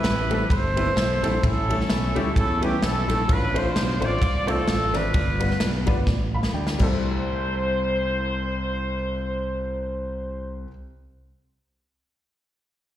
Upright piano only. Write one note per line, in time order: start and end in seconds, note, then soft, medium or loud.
0.00 0.27 C3 medium
0.30 0.41 G3 medium
0.30 0.41 A3 medium
0.30 0.41 C4 medium
0.30 0.41 E4 medium
0.30 0.42 A4 medium
0.76 0.87 G3 medium
0.76 0.87 A3 medium
0.76 0.87 C4 medium
0.76 0.87 E4 medium
0.76 0.88 B4 medium
1.23 1.33 G3 medium
1.23 1.34 A3 medium
1.23 1.34 C4 medium
1.23 1.34 E4 medium
1.23 1.34 A4 loud
1.43 2.12 A2 medium
1.70 1.80 G3 medium
1.70 1.80 A3 medium
1.70 1.80 C#4 medium
1.70 1.81 E4 medium
1.70 1.81 A4 medium
2.15 2.26 G3 medium
2.15 2.26 A3 medium
2.15 2.27 C#4 medium
2.15 2.27 E4 medium
2.15 2.27 G4 loud
2.61 2.72 G3 medium
2.61 2.73 A3 medium
2.61 2.73 C#4 medium
2.61 2.73 E4 medium
2.61 2.73 B4 medium
3.08 3.19 G3 medium
3.08 3.19 A3 medium
3.08 3.19 C#4 medium
3.08 3.20 E4 medium
3.08 3.20 A4 medium
3.28 3.98 A2 medium
3.54 3.65 A3 medium
3.54 3.65 C4 medium
3.54 3.65 D4 medium
3.54 3.66 F4 medium
3.54 3.66 C5 medium
4.00 4.12 A3 medium
4.00 4.12 C4 medium
4.00 4.12 D4 medium
4.00 4.12 F4 medium
4.00 4.12 C5 medium
4.47 4.58 A3 medium
4.47 4.58 C4 medium
4.47 4.58 D4 medium
4.47 4.58 F4 medium
4.47 4.58 C5 medium
4.93 5.05 A3 medium
4.93 5.04 C4 medium
4.93 5.05 D4 medium
4.93 5.05 F4 medium
4.93 5.05 D5 medium
5.14 5.83 G2 medium
5.40 5.51 G3 medium
5.40 5.51 B3 medium
5.40 5.51 D4 medium
5.40 5.52 F4 medium
5.40 5.52 B4 medium
5.86 5.97 G3 medium
5.86 5.98 B3 medium
5.86 5.98 D4 medium
5.86 5.98 F4 medium
5.86 5.98 B4 loud
6.34 6.54 F5 medium
6.34 6.54 B5 medium
6.54 6.80 D5 medium
6.54 6.80 G5 medium
6.78 10.66 C2 medium
6.78 10.63 G3 medium
6.78 10.65 C4 medium
6.78 10.67 E4 medium
6.83 10.68 A4 medium